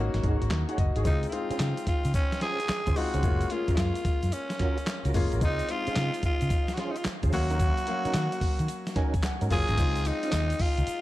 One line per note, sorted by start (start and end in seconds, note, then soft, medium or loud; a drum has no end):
0.00 0.93 A#3 medium
0.00 0.94 C#4 medium
0.00 0.94 D#4 medium
0.00 0.94 F#4 loud
0.14 0.21 G#1 medium
0.14 snare medium
0.14 closed hi-hat soft
0.23 0.36 G#1 medium
0.23 0.41 D#4 medium
0.23 0.41 F#4 medium
0.23 0.42 G#4 medium
0.23 0.42 C#5 medium
0.23 kick medium
0.23 closed hi-hat medium
0.41 0.48 G#1 medium
0.41 closed hi-hat soft
0.50 0.63 D#2 medium
0.50 snare loud
0.50 clap medium
0.50 closed hi-hat medium
0.68 0.78 D#4 medium
0.68 0.78 F#4 medium
0.68 0.78 G#4 medium
0.68 0.78 C#5 medium
0.68 0.78 F#5 medium
0.68 closed hi-hat medium
0.78 0.91 F#1 loud
0.78 0.95 D#5 medium
0.78 kick medium
0.78 closed hi-hat medium
0.96 1.03 G#1 medium
0.96 1.05 D#4 medium
0.96 1.05 F#4 medium
0.96 1.06 G#4 medium
0.96 1.22 G#4 medium
0.96 1.06 C#5 medium
0.96 closed hi-hat medium
1.05 1.25 C#2 medium
1.05 1.30 G#3 medium
1.05 1.30 C4 medium
1.05 1.30 D#4 medium
1.05 1.27 D#4 loud
1.05 1.30 F4 medium
1.05 kick loud
1.05 closed hi-hat medium
1.05 shaker medium
1.23 closed hi-hat medium
1.23 shaker soft
1.29 2.29 G#3 medium
1.29 2.30 C4 medium
1.29 2.30 D#4 medium
1.29 1.35 E4 medium
1.29 closed hi-hat medium
1.33 2.30 F4 medium
1.33 1.88 F4 medium
1.50 1.60 C#4 medium
1.50 1.60 F4 medium
1.50 1.60 G#4 medium
1.50 1.60 C5 medium
1.50 muted fingered electric bass stroke soft
1.50 closed hi-hat medium
1.50 shaker soft
1.59 1.72 C#3 medium
1.59 snare loud
1.59 clap medium
1.59 closed hi-hat medium
1.59 shaker medium
1.77 closed hi-hat medium
1.77 shaker soft
1.87 2.13 F4 loud
1.87 muted fingered electric bass stroke soft
1.87 kick medium
1.87 closed hi-hat medium
1.87 shaker soft
2.05 2.12 C#3 medium
2.05 closed hi-hat soft
2.05 shaker soft
2.14 2.40 C#4 loud
2.14 kick loud
2.14 closed hi-hat medium
2.14 shaker medium
2.32 snare medium
2.32 closed hi-hat soft
2.32 shaker soft
2.41 2.60 C#4 medium
2.41 2.60 F4 medium
2.41 2.60 G#4 medium
2.41 2.98 G#4 loud
2.41 2.60 C5 medium
2.41 snare medium
2.41 closed hi-hat medium
2.59 closed hi-hat soft
2.59 shaker medium
2.68 muted fingered electric bass stroke soft
2.68 snare loud
2.68 clap loud
2.68 closed hi-hat medium
2.68 shaker medium
2.86 2.94 C#2 medium
2.86 2.96 C#4 medium
2.86 2.96 F4 medium
2.86 2.96 G#4 medium
2.86 2.96 C5 medium
2.86 kick medium
2.86 closed hi-hat medium
2.86 shaker soft
2.96 3.21 G#3 medium
2.96 3.21 C4 medium
2.96 3.21 D#4 medium
2.96 3.21 F4 medium
2.96 3.52 F#4 loud
2.96 open hi-hat medium
2.96 shaker medium
3.14 3.21 C#2 medium
3.14 3.23 C#4 medium
3.14 3.24 F4 medium
3.14 3.24 G#4 medium
3.14 3.24 C5 medium
3.14 closed hi-hat medium
3.14 shaker soft
3.23 3.42 F#1 loud
3.23 3.48 G#3 medium
3.23 3.48 A#3 medium
3.23 3.49 C#4 medium
3.23 3.49 F4 medium
3.23 kick loud
3.23 closed hi-hat medium
3.23 shaker medium
3.41 closed hi-hat medium
3.41 shaker soft
3.50 4.48 G#3 medium
3.50 4.48 A#3 medium
3.50 4.48 C#4 medium
3.50 3.73 F4 medium
3.50 4.49 F4 medium
3.50 closed hi-hat medium
3.68 3.78 C#4 medium
3.68 3.78 F4 medium
3.68 3.78 F#4 medium
3.68 3.78 A#4 medium
3.68 muted fingered electric bass stroke soft
3.68 kick loud
3.68 closed hi-hat medium
3.68 shaker soft
3.75 3.91 F#2 loud
3.75 3.80 E4 medium
3.75 4.35 F4 medium
3.75 snare loud
3.75 clap medium
3.75 closed hi-hat medium
3.75 shaker medium
3.95 closed hi-hat medium
3.95 shaker medium
4.05 muted fingered electric bass stroke soft
4.05 kick medium
4.05 closed hi-hat medium
4.05 shaker soft
4.23 4.30 F#2 medium
4.23 closed hi-hat medium
4.23 shaker medium
4.32 5.15 C#4 medium
4.32 closed hi-hat medium
4.32 shaker medium
4.50 snare medium
4.50 closed hi-hat medium
4.50 shaker soft
4.59 4.78 C#4 medium
4.59 4.78 F4 medium
4.59 4.78 F#4 medium
4.59 4.78 A#4 medium
4.59 kick medium
4.59 snare medium
4.59 closed hi-hat medium
4.78 closed hi-hat soft
4.78 shaker medium
4.87 snare loud
4.87 clap loud
4.87 closed hi-hat medium
4.87 shaker medium
5.05 5.12 C#2 medium
5.05 5.14 C#4 medium
5.05 5.14 F4 medium
5.05 5.14 F#4 medium
5.05 5.15 A#4 medium
5.05 closed hi-hat soft
5.05 shaker soft
5.14 5.27 F#1 loud
5.14 5.39 G#3 medium
5.14 5.39 A#3 medium
5.14 5.39 C#4 medium
5.14 5.40 F4 loud
5.14 kick loud
5.14 open hi-hat medium
5.14 shaker medium
5.32 5.42 G#1 medium
5.32 5.42 C#4 medium
5.32 5.42 F4 medium
5.32 5.42 F#4 medium
5.32 5.42 A#4 medium
5.32 closed hi-hat soft
5.32 shaker soft
5.41 5.61 C#2 loud
5.41 5.66 G#3 medium
5.41 5.67 C4 medium
5.41 5.67 D#4 medium
5.41 5.73 D#4 loud
5.41 5.67 F4 medium
5.41 kick loud
5.41 closed hi-hat medium
5.41 shaker medium
5.59 closed hi-hat medium
5.59 shaker soft
5.69 6.66 G#3 medium
5.69 6.66 C4 medium
5.69 6.66 D#4 medium
5.69 6.67 F4 medium
5.69 6.24 F4 loud
5.69 closed hi-hat medium
5.87 5.96 C#4 medium
5.87 5.96 F4 medium
5.87 5.96 G#4 medium
5.87 5.96 C5 medium
5.87 muted fingered electric bass stroke soft
5.87 closed hi-hat medium
5.87 shaker soft
5.96 6.09 C#3 loud
5.96 snare loud
5.96 clap medium
5.96 closed hi-hat medium
5.96 shaker medium
6.14 closed hi-hat medium
6.14 shaker medium
6.23 6.75 F4 loud
6.23 muted fingered electric bass stroke soft
6.23 kick medium
6.23 closed hi-hat medium
6.23 shaker soft
6.41 6.48 C#3 medium
6.41 closed hi-hat medium
6.41 shaker medium
6.50 kick loud
6.50 closed hi-hat medium
6.50 shaker medium
6.68 snare medium
6.68 closed hi-hat soft
6.68 shaker soft
6.74 6.80 F#4 medium
6.74 snare medium
6.74 closed hi-hat medium
6.78 6.96 C#4 medium
6.78 6.96 F4 medium
6.78 6.92 F4 medium
6.78 6.96 G#4 medium
6.78 6.96 C5 medium
6.91 6.99 D#4 medium
6.96 7.06 F4 medium
6.96 closed hi-hat soft
6.96 shaker medium
7.04 muted fingered electric bass stroke soft
7.04 snare loud
7.04 clap medium
7.04 closed hi-hat medium
7.04 shaker medium
7.23 7.30 C#2 loud
7.23 7.32 C#4 medium
7.23 7.33 F4 medium
7.23 7.33 G#4 medium
7.23 7.33 C5 medium
7.23 kick medium
7.23 closed hi-hat medium
7.23 shaker soft
7.32 7.71 D#2 loud
7.32 7.82 F#3 medium
7.32 7.82 A#3 medium
7.32 7.82 C#4 medium
7.32 9.20 F#4 loud
7.32 7.82 F5 medium
7.32 open hi-hat medium
7.32 shaker medium
7.50 7.60 C#4 medium
7.50 7.60 D#4 medium
7.50 7.60 F#4 medium
7.50 7.60 A#4 medium
7.50 closed hi-hat medium
7.50 shaker soft
7.60 kick loud
7.60 closed hi-hat medium
7.60 shaker medium
7.78 closed hi-hat medium
7.78 shaker soft
7.87 8.84 F#3 medium
7.87 8.84 A#3 medium
7.87 8.84 C#4 medium
7.87 8.85 F5 medium
7.87 closed hi-hat medium
8.05 8.14 C#4 medium
8.05 8.14 D#4 medium
8.05 8.14 F#4 medium
8.05 8.15 A#4 medium
8.05 muted fingered electric bass stroke medium
8.05 closed hi-hat medium
8.05 shaker soft
8.14 8.27 D#3 loud
8.14 snare loud
8.14 clap medium
8.14 closed hi-hat medium
8.14 shaker medium
8.32 closed hi-hat medium
8.32 shaker medium
8.41 muted fingered electric bass stroke soft
8.41 kick medium
8.41 open hi-hat medium
8.41 shaker soft
8.59 8.66 D#3 loud
8.59 closed hi-hat medium
8.59 shaker medium
8.68 closed hi-hat medium
8.68 shaker medium
8.87 snare medium
8.87 closed hi-hat soft
8.87 shaker medium
8.96 9.14 C#4 medium
8.96 9.14 D#4 medium
8.96 9.14 F#4 medium
8.96 9.14 A#4 medium
8.96 9.22 G#5 medium
8.96 kick loud
8.96 snare medium
8.96 closed hi-hat medium
9.14 kick loud
9.14 closed hi-hat soft
9.14 shaker medium
9.23 9.49 F#5 medium
9.23 snare loud
9.23 clap loud
9.23 closed hi-hat medium
9.23 shaker medium
9.41 9.48 G#2 medium
9.41 9.51 C#4 medium
9.41 9.51 D#4 medium
9.41 9.51 F#4 medium
9.41 9.51 A#4 medium
9.41 closed hi-hat soft
9.41 shaker soft
9.51 9.63 F#1 medium
9.51 9.75 F#3 medium
9.51 9.75 A#3 medium
9.51 9.76 C#4 medium
9.51 9.76 F4 loud
9.51 10.09 G#4 loud
9.51 9.76 F5 medium
9.51 kick medium
9.51 open hi-hat medium
9.51 shaker medium
9.68 9.76 G#1 medium
9.68 9.78 C#4 medium
9.68 9.78 D#4 medium
9.68 9.78 F#4 medium
9.68 9.78 A#4 medium
9.68 closed hi-hat medium
9.68 shaker soft
9.78 10.10 C#2 loud
9.78 10.75 G#3 medium
9.78 10.75 C4 medium
9.78 10.76 D#4 medium
9.78 10.76 F4 medium
9.78 kick loud
9.78 closed hi-hat medium
9.78 crash medium
9.78 tambourine medium
9.78 shaker medium
9.96 closed hi-hat medium
9.96 shaker soft
10.05 10.63 D#4 loud
10.05 closed hi-hat medium
10.05 tambourine medium
10.05 shaker soft
10.23 10.33 C#4 medium
10.23 10.33 D#4 medium
10.23 10.33 F4 medium
10.23 10.33 C5 medium
10.23 closed hi-hat medium
10.23 shaker soft
10.32 10.52 D#2 medium
10.32 snare loud
10.32 clap medium
10.32 closed hi-hat medium
10.32 tambourine medium
10.32 shaker medium
10.50 closed hi-hat medium
10.50 shaker medium
10.59 11.01 F4 loud
10.59 kick loud
10.59 open hi-hat medium
10.59 tambourine medium
10.78 10.85 C#2 medium
10.78 closed hi-hat medium
10.78 shaker medium
10.87 muted fingered electric bass stroke soft
10.87 closed hi-hat medium
10.87 shaker medium